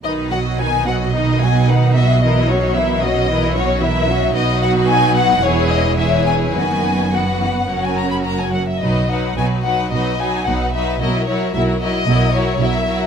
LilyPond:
<<
  \new Staff \with { instrumentName = "Violin section" } { \time 4/4 \key b \major \tempo 4 = 110 dis''8 fis''8 gis''8 fis''8 dis''8 gis''8 fis''8 e''8 | dis''8 cis''8 e''8 dis''4 cis''8 e''4 | dis''8 fis''8 gis''8 fis''8 cis''8 dis''8 e''8 gis''8 | gis''4 fis''4~ fis''16 gis''16 ais''16 b''16 ais''16 gis''16 fis''16 e''16 |
dis''8 fis''8 gis''8 fis''8 dis''8 gis''8 fis''8 e''8 | dis''8 cis''8 e''8 dis''4 cis''8 e''4 | }
  \new Staff \with { instrumentName = "Violin section" } { \time 4/4 \key b \major <dis' b'>8 <fis' dis''>8 <dis' b'>8 <fis' dis''>8 <dis' b'>8 <fis' dis''>8 <dis' b'>8 <fis' dis''>8 | <e' ais'>8 <fis' cis''>8 <e' ais'>8 <fis' cis''>8 <e' ais'>8 <fis' cis''>8 <e' ais'>8 <fis' cis''>8 | <fis' b'>2 <gis' cis''>4 <gis' cis''>4 | <fis' b'>4 <fis' b'>4 <fis' ais'>4. r8 |
<fis' b'>8 <fis' b'>8 <fis' b'>8 <fis' b'>8 <fis' b'>8 <fis' b'>8 <fis' b'>8 <fis' b'>8 | <fis' ais'>8 <fis' ais'>8 <fis' ais'>8 <fis' ais'>8 <fis' ais'>8 <fis' ais'>8 <fis' ais'>8 <fis' ais'>8 | }
  \new Staff \with { instrumentName = "Viola section" } { \clef bass \time 4/4 \key b \major << { dis'8 b8 dis'8 b8 dis'8 b8 dis'8 b8 | e'8 cis'8 e'8 cis'8 e'8 cis'8 e'8 cis'8 | dis'2 e'4 e'4 | b4 b4 cis'4. r8 |
dis'8 dis'8 dis'8 dis'8 dis'8 dis'8 dis'8 dis'8 | e'8 e'8 e'8 e'8 e'8 e'8 e'8 e'8 | } \\ { dis8 fis8 dis8 fis8 dis8 fis8 dis8 fis8 | e8 fis8 e8 fis8 e8 fis8 e8 fis8 | fis2 e4 e4 | dis4 dis8 e8 fis4. r8 |
fis8 fis8 fis8 fis8 fis8 fis8 fis8 fis8 | fis8 fis8 fis8 fis8 fis8 fis8 fis8 fis8 | } >> }
  \new Staff \with { instrumentName = "Cello section" } { \clef bass \time 4/4 \key b \major b,1~ | b,1 | b,2 e,2 | fis,2 fis,4. r8 |
b,4 b,4 b,4 b,4 | b,4 b,4 b,4 b,4 | }
  \new Staff \with { instrumentName = "Double bass section" } { \clef bass \time 4/4 \key b \major b,,1~ | b,,1 | b,,2 e,,2 | fis,,2 fis,,4. r8 |
b,,4 b,,4 b,,4 b,,4 | b,,4 b,,4 b,,4 b,,4 | }
>>